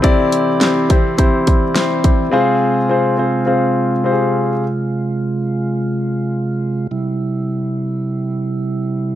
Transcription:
<<
  \new Staff \with { instrumentName = "Grand piano" } { \time 4/4 \key f \lydian \tempo 4 = 105 <c' e' g' d''>4 <c' e' g' c''>8 <c' e' g' c''>8 <c' e' g' c''>4 <c' e' g' c''>4 | <c' f' aes' c''>4 <c' f' aes' c''>8 <c' f' aes' c''>8 <c' f' aes' c''>4 <c' f' g' aes' c''>4 | r1 | r1 | }
  \new Staff \with { instrumentName = "Grand piano" } { \clef bass \time 4/4 \key f \lydian c4. r2 r8 | r1 | r1 | r1 | }
  \new Staff \with { instrumentName = "Tonewheel organ" } { \clef bass \time 4/4 \key f \lydian <e c' g'>1 | <c aes f'>1~ | <c aes f'>1 | <c g e'>1 | }
  \new DrumStaff \with { instrumentName = "Drums" } \drummode { \time 4/4 <hh bd>8 hh8 <hh sn>8 <hh bd>8 <hh bd>8 <hh bd>8 <hh sn>8 <hh bd>8 | r4 r4 r4 r4 | r4 r4 r4 r4 | r4 r4 r4 r4 | }
>>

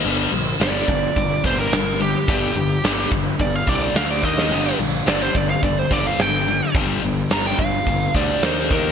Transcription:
<<
  \new Staff \with { instrumentName = "Lead electric guitar" } { \time 4/4 \key g \minor \tempo 4 = 107 r4 d''4. c''16 bes'8. g'8~ | g'4. r8 d''16 f''16 d''16 d''16 f''16 d''16 ees''8~ | ees''8 r8 d''16 c''16 d''16 f''16 d''16 c''16 d''16 f''16 g''4 | r4 bes''16 g''16 f''4 d''8 c''8 bes'8 | }
  \new Staff \with { instrumentName = "Distorted electric guitar" } { \clef bass \time 4/4 \key g \minor <g, d g>8 <g, d>8 <g, d g>8 <g, d>8 <g, d>8 <g, d g>8 <g, d>8 <g, d>8 | <g, d g>8 <g, d>8 <g, d g>8 <g, d>8 <g, d>8 <g, d g>8 <d a d'>8 <ees bes ees'>8 | <g, d g>8 <g, d>8 <g, d g>8 <g, d>8 <g, d>8 <g, d g>8 <g, d>8 <g, d>8 | <g, d g>8 <g, d>8 <g, d g>8 <g, d>8 <g, d>8 <g, d g>8 <ees bes ees'>8 <ees bes ees'>8 | }
  \new Staff \with { instrumentName = "Picked electric bass" } { \clef bass \time 4/4 \key g \minor g,,8 bes,,8 g,,8 g,,8 g,,8 g,,8 g,,4 | g,,8 g,,8 g,,8 g,,8 g,,8 c,8 d,8 ees,8 | g,,8 bes,,8 g,,8 g,,8 g,,8 g,,8 g,,4 | g,,8 g,,8 g,,8 g,,8 g,,8 d,8 ees,8 ees,8 | }
  \new DrumStaff \with { instrumentName = "Drums" } \drummode { \time 4/4 r4 <hho sn>16 sn16 bd8 <hho bd>8 bd8 <hho sn>4 | <hho bd>4 <hho sn>8 bd8 <hho bd>8 bd8 <hho sn>8 bd16 sn16 | <cymc hho>4 <hho sn>16 sn16 bd8 <hho bd>8 bd8 <hho sn>4 | <hho bd>4 <hho sn>8 bd8 <hho bd>8 bd8 <hho sn>8 bd8 | }
>>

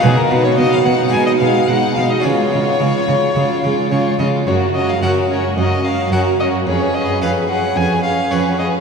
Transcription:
<<
  \new Staff \with { instrumentName = "Violin" } { \time 4/4 \key fis \major \tempo 4 = 109 gis'16 ais'16 b'16 cis''16 dis''16 eis''16 fis''8 gis''16 dis''16 eis''8 fis''8 eis''16 dis''16 | cis''2. cis''8 dis''8 | cis''8 dis''16 eis''16 fis''8 cis''8 dis''8 eis''8 fis''8 dis''8 | cis''8 dis''8 eis''8 fis''8 gis''8 eis''8 cis''8 dis''8 | }
  \new Staff \with { instrumentName = "Violin section" } { \time 4/4 \key fis \major gis'16 ais'16 b'16 cis''16 dis''16 eis''16 fis''8 gis''16 dis''16 eis''8 fis''8 eis''16 dis''16 | cis''2. r4 | ais'8 ais'8 ais'8 ais'8 ais'8 ais'8 ais'8 ais'8 | b'8 b'8 b'8 b'8 b'8 b'8 b'8 b'8 | }
  \new Staff \with { instrumentName = "Violin section" } { \time 4/4 \key fis \major dis'8 dis'8 dis'8 dis'8 dis'8 dis'8 dis'8 dis'8 | eis'8 eis'8 eis'8 eis'8 eis'8 eis'8 eis'8 eis'8 | fis'8 fis'8 fis'8 fis'8 fis'8 fis'8 fis'8 fis'8 | gis'8 gis'8 gis'8 gis'8 gis'8 gis'8 gis'8 gis'8 | }
  \new Staff \with { instrumentName = "Viola section" } { \time 4/4 \key fis \major b8 b8 b8 b8 gis8 gis8 gis8 gis8 | gis8 gis8 gis8 gis8 gis8 gis8 gis8 gis8 | cis'8 cis'8 cis'8 cis'8 cis'8 cis'8 cis'8 cis'8 | cis'8 cis'8 cis'8 cis'8 cis'8 cis'8 cis'8 cis'8 | }
  \new Staff \with { instrumentName = "Harpsichord" } { \time 4/4 \key fis \major <dis' fis' b'>2 <dis' gis'>2 | <cis' eis' gis'>1 | r4 <cis' fis' ais'>4 r4 <cis' fis' ais'>4 | r4 <cis' gis' b'>4 r4 <cis' gis' b'>4 | }
  \new Staff \with { instrumentName = "Harpsichord" } { \clef bass \time 4/4 \key fis \major b,8 b,8 b,8 b,8 b,8 b,8 b,8 b,8 | cis8 cis8 cis8 cis8 cis8 cis8 cis8 cis8 | fis,4 fis,4 fis,4 fis,4 | eis,4 eis,4 eis,4 eis,4 | }
  \new Staff \with { instrumentName = "Cello section" } { \clef bass \time 4/4 \key fis \major b,8 b,8 b,8 b,8 b,8 b,8 b,8 b,8 | cis8 cis8 cis8 cis8 cis8 cis8 cis8 cis8 | fis,4 fis,4 fis,4 fis,4 | eis,4 eis,4 eis,4 eis,4 | }
>>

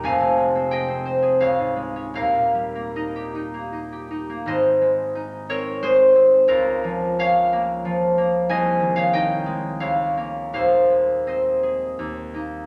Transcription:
<<
  \new Staff \with { instrumentName = "Harp" } { \time 3/4 \key aes \major \tempo 4 = 86 << { aes''4 g''4 f''4 | f''4 ees''2 | ees''4. des''8 c''4 | bes'4 f''2 |
aes''8. f''16 g''4 f''4 | f''4 ees''2 | } \\ { f''4 ees''4 des''4 | bes'4 bes'2 | c''4. bes'8 aes'4 | f'4 des''2 |
ees''8. des''16 ees''4 des''4 | c''4 c''4 r4 | } >> }
  \new Staff \with { instrumentName = "Harp" } { \time 3/4 \key aes \major <f,, f,>16 c16 aes16 c'16 aes'16 c'16 c''16 aes'16 des,16 aes,16 aes16 des'16 | <ees,, ees,>16 bes,16 g16 bes16 ees'16 g'16 ees'16 bes16 ees'16 g'16 ees'16 bes16 | <aes,, aes,>8 aes8 ees'8 c'8 aes8 c'8 | des,8 f8 des'8 bes8 f8 bes8 |
c,8 ees8 ees'8 aes8 des,8 <bes des'>8 | <ees,, ees,>8 aes8 c'8 aes'8 ees,8 <bes ees'>8 | }
>>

